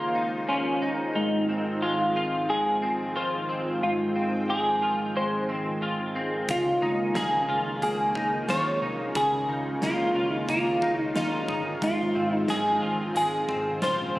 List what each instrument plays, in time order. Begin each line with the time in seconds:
Already playing: clean electric guitar C#3 A#3 D#4 F4, analog synth pad D#3 G#3 A#3 F4 C5
0.15 clean electric guitar D#4
0.49 clean electric guitar C#4 F4
0.82 clean electric guitar D#4
1.15 clean electric guitar G#2 D#4, analog synth pad F3 C4
1.49 clean electric guitar C4
1.82 clean electric guitar G#3 F4
2.16 clean electric guitar F4
2.49 clean electric guitar G#3 G#4
2.82 clean electric guitar C4
3.16 clean electric guitar F4 C5
3.49 clean electric guitar C4
3.83 clean electric guitar G#2 F4, analog synth pad G5
4.16 clean electric guitar C4
4.49 clean electric guitar G#3 G#4
4.82 clean electric guitar F4
5.16 clean electric guitar G#3 C5
5.49 clean electric guitar C4
5.82 clean electric guitar F4
6.15 clean electric guitar C4
6.49 fingered electric bass C#2, analog synth pad A#3 C#4 F4, clean electric guitar F4, kick, closed hi-hat
6.82 fingered electric bass C#2, clean electric guitar D#4
7.15 fingered electric bass C#2, clean electric guitar A#3 G#4, snare, closed hi-hat
7.48 fingered electric bass C#2, clean electric guitar F4
7.82 fingered electric bass C#2, clean electric guitar A#3 G#4, closed hi-hat
8.15 fingered electric bass C#2, clean electric guitar D#4, kick
8.48 fingered electric bass D#2, clean electric guitar F4 C#5, snare, closed hi-hat
8.81 fingered electric bass C2, clean electric guitar D#4
9.15 fingered electric bass C#2, clean electric guitar C#3 G#4, kick, closed hi-hat
9.48 fingered electric bass C#2, clean electric guitar D#4
9.82 fingered electric bass C#2, clean electric guitar A#3 F4, snare, closed hi-hat
10.15 fingered electric bass C#2, clean electric guitar F4
10.34 clean electric guitar D#4
10.48 fingered electric bass C#2, clean electric guitar A#3 F4, kick, closed hi-hat
10.82 fingered electric bass C#2, clean electric guitar D#4, kick
11.01 clean electric guitar D#4
11.15 fingered electric bass D#2, clean electric guitar D#4 F4, snare, closed hi-hat
11.48 fingered electric bass G1, clean electric guitar D#4, kick
11.82 fingered electric bass G#1, clean electric guitar G#2 F4, analog synth pad D#3 F3 G#3 C4, kick, closed hi-hat
12.15 fingered electric bass G#1, clean electric guitar C4
12.35 clean electric guitar D#4
12.48 fingered electric bass G#1, clean electric guitar G#3 G#4, snare, closed hi-hat
12.82 fingered electric bass G#1, clean electric guitar F4
13.15 fingered electric bass G#1, clean electric guitar G#3 G#4, closed hi-hat
13.48 fingered electric bass G#1, clean electric guitar C4, kick
13.82 fingered electric bass A#1, clean electric guitar F4 C5, snare, closed hi-hat
14.15 fingered electric bass C#2, clean electric guitar C4